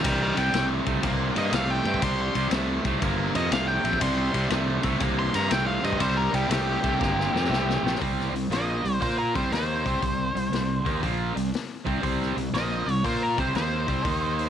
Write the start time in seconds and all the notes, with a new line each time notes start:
0.03 C2 C3 G3 D#5 G5, kick, ride
0.22 D#5 G5
0.37 C2 C3 G3 G5, ride
0.53 C2 C3 A3, snare, ride
0.86 C2 C3 A3, kick, ride
1.03 C2 C3 A#3, kick, ride
1.36 G2 C3 A#3 D#5, ride
1.52 C2 C3 A3 F5, snare, ride
1.70 G5
1.85 G2 C3 A3, ride
1.94 kick
2.02 C2 C3 G3 C6, kick, ride
2.21 C6
2.35 C2 C3 G3, ride
2.51 C2 C3 A3, snare, ride
2.85 C2 C3 A3, kick, ride
3.01 G1 C3 A#3, kick, ride
3.35 F2 C3 A#3 D#5, ride
3.51 C2 C3 A3 F5, snare, ride
3.68 G5
3.84 A#1 C3 A3, ride
3.93 kick
4.01 C2 C3 G3 C6, kick, ride
4.18 C6
4.34 C2 C3 G3, ride
4.50 C2 C3 A3, snare, ride
4.83 C2 C3 A3, kick, ride
5.00 C2 C3 A#3, kick, ride
5.19 C6
5.34 G2 C3 A#3 A#5, ride
5.50 C2 C3 A3 G5, snare, ride
5.67 F5
5.83 G2 C3 A3 D#5, ride
5.93 kick
5.99 C2 C3 G3 C5, kick, ride
6.17 A#4
6.33 C2 C3 G3 G4, ride
6.49 C2 C3 A3 G4, snare, ride
6.83 C2 C3 A3, kick, ride
6.99 G1 C3 A#3, kick, snare
7.20 snare
7.33 F2 C3 A#3, snare
7.44 snare
7.49 C2 C3 A3, snare
7.70 snare
7.83 A#1 C3 A3, snare
7.95 snare
8.00 C2 C3 G3 C4, kick, open hi-hat
8.20 snare
8.33 C2 C3 G3, open hi-hat
8.50 A#1 A#2 F3 A#3 D#5, snare, open hi-hat
8.84 C2 C3 G3, open hi-hat
9.00 A#2 A#3 F4 A#4 C5, kick, open hi-hat
9.19 A#4
9.35 C2 C3 G3 C4 C5, kick, open hi-hat
9.51 D#2 D#3 A#3 D#4 C5, snare, open hi-hat
9.85 C2 C3 G3 C4, kick, open hi-hat
10.02 C2 C3 G3, kick, open hi-hat
10.35 C2 C3 G3, open hi-hat
10.52 C2 C3 G3, snare, open hi-hat
10.85 D#2 D#3 A#3 D#4, kick, open hi-hat
11.01 A#1 A#2 F3 A#3, kick, open hi-hat
11.35 C2 C3 G3, open hi-hat
11.54 snare, open hi-hat
11.86 C2 C3 G3 C4, kick, open hi-hat
12.02 C2 C3 G3 C4, kick, open hi-hat
12.22 snare
12.37 C2 C3 G3, open hi-hat
12.53 A#1 A#2 F3 A#3 D#5, snare, open hi-hat
12.86 C2 C3 G3, open hi-hat
13.04 A#2 A#3 F4 A#4 C5, kick, open hi-hat
13.23 A#4
13.38 C2 C3 G3 C4 C5, kick, open hi-hat
13.54 D#2 D#3 A#3 D#4 C5, snare, open hi-hat
13.88 C2 C3 G3 C4, kick, open hi-hat
14.04 D#2 D#3 A#3 D#4, kick, open hi-hat
14.39 open hi-hat